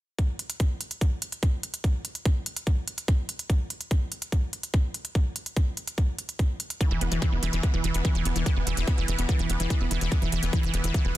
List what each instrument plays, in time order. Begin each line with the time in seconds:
0.19 kick, closed hi-hat
0.39 closed hi-hat
0.50 closed hi-hat
0.60 kick, closed hi-hat
0.81 closed hi-hat
0.91 closed hi-hat
1.01 kick, closed hi-hat
1.22 closed hi-hat
1.32 closed hi-hat
1.43 kick, closed hi-hat
1.63 closed hi-hat
1.74 closed hi-hat
1.84 kick, closed hi-hat
2.05 closed hi-hat
2.15 closed hi-hat
2.25 kick, closed hi-hat
2.46 closed hi-hat
2.56 closed hi-hat
2.67 kick, closed hi-hat
2.88 closed hi-hat
2.98 closed hi-hat
3.08 kick, closed hi-hat
3.29 closed hi-hat
3.39 closed hi-hat
3.50 kick, closed hi-hat
3.70 closed hi-hat
3.81 closed hi-hat
3.91 kick, closed hi-hat
4.12 closed hi-hat
4.22 closed hi-hat
4.32 kick, closed hi-hat
4.53 closed hi-hat
4.63 closed hi-hat
4.74 kick, closed hi-hat
4.94 closed hi-hat
5.05 closed hi-hat
5.15 kick, closed hi-hat
5.36 closed hi-hat
5.46 closed hi-hat
5.56 kick, closed hi-hat
5.77 closed hi-hat
5.88 closed hi-hat
5.98 kick, closed hi-hat
6.19 closed hi-hat
6.29 closed hi-hat
6.39 kick, closed hi-hat
6.60 closed hi-hat
6.70 closed hi-hat
6.81 synth arpeggio sound E3, kick, closed hi-hat
6.91 analog synth bass E1, synth arpeggio sound E3
7.01 analog synth bass E1, synth arpeggio sound B3, closed hi-hat
7.12 analog synth bass E1, synth arpeggio sound E3, closed hi-hat
7.22 synth arpeggio sound E3, kick, closed hi-hat
7.32 analog synth bass F1, synth arpeggio sound B3
7.43 analog synth bass E1, synth arpeggio sound E3, closed hi-hat
7.53 analog synth bass E1, synth arpeggio sound E3, closed hi-hat
7.63 synth arpeggio sound B3, kick, closed hi-hat
7.74 analog synth bass E1, synth arpeggio sound E3
7.84 analog synth bass E1, synth arpeggio sound E3, closed hi-hat
7.94 analog synth bass E1, synth arpeggio sound B3, closed hi-hat
8.05 synth arpeggio sound E3, kick, closed hi-hat
8.15 analog synth bass E1, synth arpeggio sound E3
8.25 analog synth bass E1, synth arpeggio sound B3, closed hi-hat
8.36 analog synth bass E1, synth arpeggio sound E3, closed hi-hat
8.46 synth arpeggio sound E3, kick, closed hi-hat
8.56 analog synth bass E1, synth arpeggio sound B3
8.67 analog synth bass E1, synth arpeggio sound E3, closed hi-hat
8.77 analog synth bass E1, synth arpeggio sound E3, closed hi-hat
8.88 synth arpeggio sound B3, kick, closed hi-hat
8.98 analog synth bass F1, synth arpeggio sound E3
9.08 analog synth bass E1, synth arpeggio sound E3, closed hi-hat
9.19 analog synth bass E1, synth arpeggio sound B3, closed hi-hat
9.29 synth arpeggio sound E3, kick, closed hi-hat
9.39 analog synth bass E1, synth arpeggio sound E3
9.50 analog synth bass E1, synth arpeggio sound B3, closed hi-hat
9.60 analog synth bass E1, synth arpeggio sound E3, closed hi-hat
9.70 synth arpeggio sound E3, kick, closed hi-hat
9.81 analog synth bass E1, synth arpeggio sound B3
9.91 analog synth bass E1, synth arpeggio sound E3, closed hi-hat
10.01 analog synth bass E1, synth arpeggio sound E3, closed hi-hat
10.12 synth arpeggio sound B3, kick, closed hi-hat
10.22 analog synth bass E1, synth arpeggio sound E3
10.32 analog synth bass E1, synth arpeggio sound E3, closed hi-hat
10.43 analog synth bass E1, synth arpeggio sound B3, closed hi-hat
10.53 synth arpeggio sound E3, kick, closed hi-hat
10.63 analog synth bass F1, synth arpeggio sound E3
10.74 analog synth bass E1, synth arpeggio sound B3, closed hi-hat
10.84 analog synth bass E1, synth arpeggio sound E3, closed hi-hat
10.94 synth arpeggio sound E3, kick, closed hi-hat
11.05 analog synth bass E1, synth arpeggio sound B3